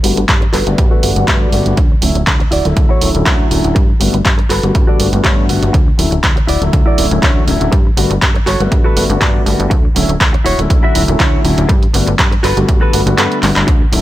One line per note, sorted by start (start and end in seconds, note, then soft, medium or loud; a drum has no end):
0.03 0.13 G1 medium
0.03 0.18 D3 medium
0.03 0.18 G3 medium
0.03 0.18 A3 medium
0.03 0.18 B3 medium
0.03 0.18 F#4 medium
0.03 muted clean electric guitar stroke soft
0.03 open hi-hat loud
0.16 0.25 G1 medium
0.16 muted clean electric guitar stroke soft
0.16 closed hi-hat soft
0.29 0.47 G2 medium
0.29 kick loud
0.29 clap loud
0.29 closed hi-hat medium
0.41 muted clean electric guitar stroke medium
0.41 closed hi-hat soft
0.53 0.63 G1 medium
0.53 0.66 F#4 medium
0.53 0.67 A4 medium
0.53 0.67 B4 medium
0.53 clap soft
0.53 open hi-hat loud
0.66 0.75 G1 medium
0.66 1.00 D3 medium
0.66 1.00 G3 medium
0.66 1.00 A3 medium
0.66 1.01 B3 medium
0.66 1.01 F#4 medium
0.66 closed hi-hat soft
0.77 0.88 G2 medium
0.77 muted clean electric guitar stroke soft
0.77 kick loud
0.77 closed hi-hat medium
0.91 1.09 F#4 loud
0.91 1.10 A4 medium
0.91 1.10 B4 loud
1.03 1.12 G1 medium
1.03 1.13 D3 medium
1.03 1.13 G3 medium
1.03 1.13 A3 medium
1.03 1.13 B3 medium
1.03 1.14 F#4 medium
1.03 1.26 F#5 medium
1.03 open hi-hat loud
1.16 1.25 G1 loud
1.16 1.25 D3 medium
1.16 1.25 G3 medium
1.16 1.25 A3 medium
1.16 1.25 B3 medium
1.16 1.25 F#4 medium
1.16 closed hi-hat medium
1.27 1.46 G2 loud
1.27 1.49 G3 medium
1.27 1.49 A3 medium
1.27 1.47 F#4 medium
1.27 1.47 A4 medium
1.27 1.47 B4 medium
1.27 1.40 E5 medium
1.27 kick loud
1.27 clap loud
1.27 closed hi-hat medium
1.41 1.75 D5 medium
1.52 1.62 G1 medium
1.52 1.74 D3 medium
1.52 1.74 G3 medium
1.52 1.74 A3 medium
1.52 1.74 B3 medium
1.52 1.74 F#4 loud
1.52 open hi-hat loud
1.65 1.74 G1 loud
1.65 muted clean electric guitar stroke soft
1.65 closed hi-hat soft
1.77 1.95 D2 loud
1.77 muted clean electric guitar stroke loud
1.77 kick loud
1.77 closed hi-hat medium
1.90 muted clean electric guitar stroke soft
2.02 2.12 D1 medium
2.02 2.16 D3 medium
2.02 2.16 F#3 medium
2.02 2.16 A3 medium
2.02 2.16 C#4 medium
2.02 2.16 E4 medium
2.02 muted clean electric guitar stroke soft
2.02 open hi-hat loud
2.15 2.24 D1 medium
2.15 muted clean electric guitar stroke soft
2.15 closed hi-hat soft
2.27 2.45 D2 medium
2.27 kick loud
2.27 clap loud
2.27 closed hi-hat medium
2.40 muted clean electric guitar stroke medium
2.40 closed hi-hat soft
2.51 2.61 D1 medium
2.51 2.65 E4 medium
2.51 2.65 F#4 medium
2.51 2.66 D5 medium
2.51 open hi-hat loud
2.65 2.73 D1 medium
2.65 2.99 D3 medium
2.65 2.99 F#3 medium
2.65 2.99 A3 medium
2.65 2.99 E4 medium
2.65 closed hi-hat soft
2.76 2.86 D2 loud
2.76 muted clean electric guitar stroke soft
2.76 kick loud
2.76 closed hi-hat medium
2.89 3.08 E4 loud
2.89 3.08 F#4 medium
2.89 3.08 C#5 loud
3.01 3.11 D1 medium
3.01 3.11 D3 medium
3.01 3.11 F#3 medium
3.01 3.12 A3 medium
3.01 3.12 C#4 medium
3.01 3.12 E4 medium
3.01 open hi-hat loud
3.14 3.23 D1 loud
3.14 3.23 D3 medium
3.14 3.23 F#3 medium
3.14 3.24 A3 medium
3.14 3.24 C#4 medium
3.14 3.24 E4 medium
3.14 closed hi-hat medium
3.25 3.44 D2 loud
3.25 3.47 D3 medium
3.25 3.48 C#4 medium
3.25 3.45 E4 medium
3.25 3.45 F#4 medium
3.25 3.46 C#5 medium
3.25 kick loud
3.25 clap loud
3.25 closed hi-hat medium
3.51 3.61 D1 medium
3.51 3.72 D3 medium
3.51 3.72 F#3 medium
3.51 3.72 A3 medium
3.51 3.73 C#4 medium
3.51 3.73 E4 loud
3.51 open hi-hat loud
3.63 3.72 D1 loud
3.63 muted clean electric guitar stroke soft
3.63 closed hi-hat soft
3.75 3.94 G2 loud
3.75 muted clean electric guitar stroke loud
3.75 kick loud
3.75 closed hi-hat medium
3.88 muted clean electric guitar stroke soft
4.00 4.10 G1 medium
4.00 4.15 D3 medium
4.00 4.15 G3 medium
4.00 4.15 A3 medium
4.00 4.15 B3 medium
4.00 4.15 F#4 medium
4.00 muted clean electric guitar stroke soft
4.00 open hi-hat loud
4.13 4.22 G1 medium
4.13 muted clean electric guitar stroke soft
4.13 closed hi-hat soft
4.25 4.43 G2 medium
4.25 kick loud
4.25 clap loud
4.25 closed hi-hat medium
4.38 muted clean electric guitar stroke medium
4.38 closed hi-hat soft
4.49 4.60 G1 medium
4.49 4.63 F#4 medium
4.49 4.64 A4 medium
4.49 4.64 B4 medium
4.49 clap soft
4.49 open hi-hat loud
4.63 4.72 G1 medium
4.63 4.97 D3 medium
4.63 4.97 G3 medium
4.63 4.97 A3 medium
4.63 4.97 B3 medium
4.63 4.97 F#4 medium
4.63 closed hi-hat soft
4.74 4.84 G2 loud
4.74 muted clean electric guitar stroke soft
4.74 kick loud
4.74 closed hi-hat medium
4.87 5.06 F#4 loud
4.87 5.06 A4 loud
4.87 5.07 D5 loud
5.00 5.09 G1 medium
5.00 5.10 D3 medium
5.00 5.10 G3 medium
5.00 5.10 A3 medium
5.00 5.10 B3 medium
5.00 5.10 F#4 medium
5.00 open hi-hat loud
5.13 5.21 G1 loud
5.13 5.22 D3 medium
5.13 5.22 G3 medium
5.13 5.22 A3 medium
5.13 5.22 B3 medium
5.13 5.22 F#4 medium
5.13 closed hi-hat medium
5.24 5.51 G2 medium
5.24 5.46 D3 medium
5.24 5.46 G3 medium
5.24 5.46 A3 medium
5.24 5.46 B3 medium
5.24 5.43 F#4 medium
5.24 5.46 F#4 medium
5.24 5.44 A4 medium
5.24 5.44 C#5 medium
5.24 kick loud
5.24 clap loud
5.24 closed hi-hat medium
5.49 5.59 G1 medium
5.49 5.70 D3 medium
5.49 5.71 G3 medium
5.49 5.71 A3 medium
5.49 5.71 B3 medium
5.49 5.71 F#4 medium
5.49 open hi-hat loud
5.62 5.71 G1 medium
5.62 muted clean electric guitar stroke soft
5.62 closed hi-hat soft
5.73 5.92 D2 loud
5.73 muted clean electric guitar stroke loud
5.73 kick loud
5.73 closed hi-hat medium
5.86 muted clean electric guitar stroke soft
5.98 6.08 D1 medium
5.98 6.13 D3 medium
5.98 6.13 F#3 medium
5.98 6.13 A3 medium
5.98 6.13 C#4 medium
5.98 6.13 E4 medium
5.98 muted clean electric guitar stroke soft
5.98 open hi-hat loud
6.11 6.20 D1 medium
6.11 muted clean electric guitar stroke soft
6.11 closed hi-hat soft
6.24 6.42 D2 medium
6.24 kick loud
6.24 clap loud
6.24 closed hi-hat medium
6.36 muted clean electric guitar stroke medium
6.36 closed hi-hat soft
6.47 6.58 D1 medium
6.47 6.61 E4 medium
6.47 6.62 F#4 medium
6.47 6.62 D5 medium
6.47 open hi-hat loud
6.62 6.70 D1 medium
6.62 6.95 D3 medium
6.62 6.95 F#3 medium
6.62 6.96 A3 medium
6.62 6.96 E4 medium
6.62 closed hi-hat soft
6.72 6.83 D2 medium
6.72 muted clean electric guitar stroke soft
6.72 kick loud
6.72 closed hi-hat medium
6.86 7.04 E4 loud
6.86 7.05 F#4 medium
6.86 7.05 D5 loud
6.98 7.07 D1 medium
6.98 7.08 D3 medium
6.98 7.08 F#3 medium
6.98 7.08 A3 medium
6.98 7.09 C#4 medium
6.98 7.09 E4 medium
6.98 open hi-hat loud
7.11 7.19 D1 loud
7.11 7.20 D3 medium
7.11 7.20 F#3 medium
7.11 7.20 A3 medium
7.11 7.20 C#4 medium
7.11 7.20 E4 medium
7.11 closed hi-hat medium
7.22 7.41 D2 medium
7.22 7.44 D3 medium
7.22 7.44 F#3 medium
7.22 7.44 C#4 medium
7.22 7.42 E4 medium
7.22 7.42 F#4 medium
7.22 7.42 C#5 medium
7.22 kick loud
7.22 clap loud
7.22 closed hi-hat medium
7.48 7.57 D1 medium
7.48 7.69 D3 medium
7.48 7.69 F#3 medium
7.48 7.69 A3 medium
7.48 7.69 C#4 medium
7.48 7.69 E4 loud
7.48 open hi-hat loud
7.60 7.69 D1 loud
7.60 muted clean electric guitar stroke soft
7.60 closed hi-hat soft
7.72 7.90 G2 loud
7.72 muted clean electric guitar stroke loud
7.72 kick loud
7.72 closed hi-hat medium
7.85 muted clean electric guitar stroke soft
7.97 8.07 G1 medium
7.97 8.11 D3 medium
7.97 8.11 G3 medium
7.97 8.11 A3 medium
7.97 8.12 B3 medium
7.97 8.12 F#4 medium
7.97 muted clean electric guitar stroke soft
7.97 open hi-hat loud
8.10 8.19 G1 medium
8.10 muted clean electric guitar stroke soft
8.10 closed hi-hat soft
8.22 8.40 G2 medium
8.22 kick loud
8.22 clap loud
8.22 closed hi-hat medium
8.35 muted clean electric guitar stroke medium
8.35 closed hi-hat soft
8.46 8.56 G1 medium
8.46 8.60 F#4 medium
8.46 8.60 A4 medium
8.46 8.61 C#5 medium
8.46 clap soft
8.46 open hi-hat loud
8.60 8.68 G1 medium
8.60 8.94 D3 medium
8.60 8.94 G3 medium
8.60 8.94 A3 medium
8.60 8.94 B3 medium
8.60 8.94 F#4 medium
8.60 closed hi-hat soft
8.71 8.81 G2 medium
8.71 muted clean electric guitar stroke soft
8.71 kick loud
8.71 closed hi-hat medium
8.84 9.03 F#4 loud
8.84 9.03 A4 medium
8.84 9.04 B4 loud
8.96 9.06 G1 medium
8.96 9.07 D3 medium
8.96 9.07 G3 medium
8.96 9.07 A3 medium
8.96 9.07 B3 medium
8.96 9.07 F#4 medium
8.96 open hi-hat loud
9.10 9.18 G1 loud
9.10 9.19 D3 medium
9.10 9.19 G3 medium
9.10 9.19 A3 medium
9.10 9.19 B3 medium
9.10 9.19 F#4 medium
9.10 closed hi-hat medium
9.21 9.39 G2 loud
9.21 9.43 D3 medium
9.21 9.43 G3 medium
9.21 9.43 A3 medium
9.21 9.43 B3 medium
9.21 9.40 F#4 medium
9.21 9.40 A4 medium
9.21 9.41 D5 medium
9.21 kick loud
9.21 clap loud
9.21 closed hi-hat medium
9.46 9.55 G1 medium
9.46 9.67 D3 medium
9.46 9.67 G3 medium
9.46 9.67 A3 medium
9.46 9.68 B3 medium
9.46 9.68 F#4 loud
9.46 open hi-hat loud
9.59 9.68 G1 loud
9.59 muted clean electric guitar stroke soft
9.59 closed hi-hat medium
9.70 9.89 D2 loud
9.70 muted clean electric guitar stroke loud
9.70 kick loud
9.70 closed hi-hat medium
9.83 muted clean electric guitar stroke soft
9.95 10.05 D1 medium
9.95 10.10 D3 medium
9.95 10.10 F#3 medium
9.95 10.10 A3 medium
9.95 10.10 C#4 medium
9.95 10.10 E4 medium
9.95 muted clean electric guitar stroke soft
9.95 open hi-hat loud
10.08 10.17 D1 medium
10.08 muted clean electric guitar stroke soft
10.08 closed hi-hat medium
10.21 10.38 D2 medium
10.21 kick loud
10.21 clap loud
10.21 closed hi-hat medium
10.33 muted clean electric guitar stroke medium
10.33 closed hi-hat soft
10.44 10.55 D1 medium
10.44 10.58 E4 medium
10.44 10.59 F#4 medium
10.44 10.59 C#5 medium
10.44 open hi-hat loud
10.59 10.67 D1 medium
10.59 10.92 D3 medium
10.59 10.92 F#3 medium
10.59 10.92 A3 medium
10.59 10.92 C#4 medium
10.59 10.93 E4 medium
10.59 closed hi-hat medium
10.69 10.79 D2 medium
10.69 muted clean electric guitar stroke soft
10.69 kick loud
10.69 closed hi-hat medium
10.83 11.01 E4 loud
10.83 11.02 F#4 loud
10.83 11.02 E5 loud
10.95 11.04 D1 medium
10.95 11.05 D3 medium
10.95 11.05 F#3 medium
10.95 11.05 A3 medium
10.95 11.05 C#4 medium
10.95 11.05 E4 medium
10.95 open hi-hat loud
11.08 11.16 D1 loud
11.08 11.17 D3 medium
11.08 11.17 F#3 medium
11.08 11.17 A3 medium
11.08 11.17 C#4 medium
11.08 11.17 E4 medium
11.08 closed hi-hat medium
11.19 11.38 D2 medium
11.19 11.41 D3 medium
11.19 11.41 F#3 medium
11.19 11.41 C#4 medium
11.19 11.38 E4 medium
11.19 11.39 F#4 medium
11.19 11.39 C#5 medium
11.19 kick medium
11.19 clap loud
11.19 closed hi-hat medium
11.44 11.54 D1 medium
11.44 11.66 D3 medium
11.44 11.66 F#3 medium
11.44 11.66 A3 medium
11.44 11.66 C#4 medium
11.44 11.66 E4 medium
11.44 open hi-hat medium
11.57 11.66 D1 loud
11.57 muted clean electric guitar stroke soft
11.57 closed hi-hat medium
11.69 11.87 G2 loud
11.69 muted clean electric guitar stroke loud
11.69 kick loud
11.69 closed hi-hat medium
11.82 muted clean electric guitar stroke soft
11.82 closed hi-hat soft
11.94 12.03 G1 medium
11.94 12.08 D3 medium
11.94 12.08 G3 medium
11.94 12.08 A3 medium
11.94 12.08 B3 medium
11.94 12.08 F#4 medium
11.94 muted clean electric guitar stroke soft
11.94 open hi-hat loud
12.07 12.15 G1 medium
12.07 muted clean electric guitar stroke soft
12.07 closed hi-hat medium
12.19 12.37 G2 medium
12.19 kick loud
12.19 clap loud
12.19 closed hi-hat medium
12.32 muted clean electric guitar stroke medium
12.32 closed hi-hat soft
12.43 12.53 G1 medium
12.43 12.57 F#4 medium
12.43 12.57 A4 medium
12.43 12.58 B4 medium
12.43 clap soft
12.43 open hi-hat loud
12.57 12.65 G1 medium
12.57 12.90 D3 medium
12.57 12.91 G3 medium
12.57 12.91 A3 medium
12.57 12.91 B3 medium
12.57 12.91 F#4 medium
12.57 closed hi-hat medium
12.68 12.78 G2 medium
12.68 muted clean electric guitar stroke soft
12.68 kick loud
12.68 closed hi-hat medium
12.81 13.00 F#4 loud
12.81 13.00 A4 medium
12.81 13.00 B4 loud
12.93 13.03 G1 medium
12.93 13.03 D3 medium
12.93 13.03 G3 medium
12.93 13.04 A3 medium
12.93 13.04 B3 medium
12.93 13.04 F#4 medium
12.93 open hi-hat loud
13.06 13.15 G1 loud
13.06 13.15 D3 medium
13.06 13.15 G3 medium
13.06 13.15 A3 medium
13.06 13.16 B3 medium
13.06 13.16 F#4 medium
13.06 closed hi-hat medium
13.17 13.27 G2 medium
13.17 13.39 D3 medium
13.17 13.39 G3 medium
13.17 13.39 A3 medium
13.17 13.40 B3 medium
13.17 13.37 F#4 medium
13.17 13.40 F#4 medium
13.17 13.37 A4 medium
13.17 13.38 B4 medium
13.17 clap loud
13.17 closed hi-hat medium
13.32 closed hi-hat soft
13.43 13.52 G1 loud
13.43 13.64 D3 medium
13.43 13.64 G3 medium
13.43 13.64 A3 medium
13.43 13.64 B3 medium
13.43 13.65 F#4 loud
13.43 clap medium
13.43 open hi-hat loud
13.55 13.64 G1 medium
13.55 muted clean electric guitar stroke soft
13.55 clap medium
13.55 closed hi-hat medium
13.67 13.86 D2 loud
13.67 muted clean electric guitar stroke loud
13.67 kick loud
13.67 closed hi-hat medium
13.80 muted clean electric guitar stroke soft
13.92 14.01 D1 medium
13.92 14.01 D3 medium
13.92 14.01 F#3 medium
13.92 14.01 A3 medium
13.92 14.01 C#4 medium
13.92 14.01 E4 medium
13.92 muted clean electric guitar stroke soft
13.92 open hi-hat loud